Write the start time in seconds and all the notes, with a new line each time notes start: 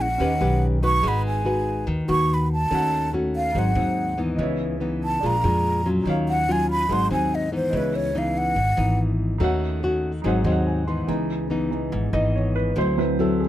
Already playing: A#1 A#2 C#4 G#4 A#4 E5
0.01 F#5
0.18 D#2 D#3 C#4 G4 B4
0.24 D#5
0.41 B1 C#4 G4 B4
0.83 D#4 F#4 B4 C#6
1.01 G#1 G#3 D#4 G#4
1.05 B4 F#5 B5
1.27 G#5
1.45 D#4 F#4 B4
1.87 D#2 D#3
2.08 D#2 D#4 F#4 B4 C#6
2.34 B5
2.53 A5
2.69 D#2 D#3 A3 C#4 D#4 F#4 A4
2.73 C#5 F#5
3.13 A3 C#4 F#4
3.36 F5
3.52 G#1 G#2 F#3 C4 D#4 G#4
3.56 C5 F#5
3.75 D#2 F#3 C4 D#4
4.18 E3 B3 D#4
4.36 C#2 C#3 B4 D#5
4.41 E4 C#5
4.80 E3 B3 D#4
5.04 A5
5.20 A#1 A#2 G#3 D4 F4 G#4 A#4
5.26 F5 A#5
5.44 F2 G#3 D4 F4
5.86 F#3 C#4 F4
6.04 D#2 D#3 D#4 C#5
6.09 F5
6.29 F#5
6.48 F#3 C#4 F4 G#5
6.71 B5
6.87 G#1 G#2 F#3 C4 D#4 G#4
6.91 D#4 C5 F#5 C6
7.11 D#2 F#3 C4 D#4 G#5
7.35 D#5
7.52 E3 B3 D#4 C5
7.70 C#2 C#3 B4 C#5 D#5
7.76 E4 B4
7.96 C#5
8.14 E3 B3 D#4 F5
8.38 F#5
8.56 G#1 G#2
8.77 G#1 E3 B3 D#4
9.38 D#2 D#3 A3 C#4 D#4 F#4 A4
9.42 C#5 F#5
9.83 A3 C#4 F#4
10.22 G#1 G#2 F#3 C4 D#4 G#4
10.26 C5 F#5
10.44 D#2 F#3 C4 D#4 D#5
10.52 F#5
10.67 G#5
10.87 E3 B3 D#4 C6
11.07 C#2 C#3 E3 B3 D#4
11.50 E3 B3 D#4
11.70 E3 B3 D#4
11.92 G#1 G#2
12.13 G#1 E3 B3 D#4 D#5
12.36 C#5
12.56 B4
12.76 D2 D3 F#3 C4 E4 C5
12.97 F#3 C4 E4 B4
13.19 F#3 C4 E4 A4
13.40 G#4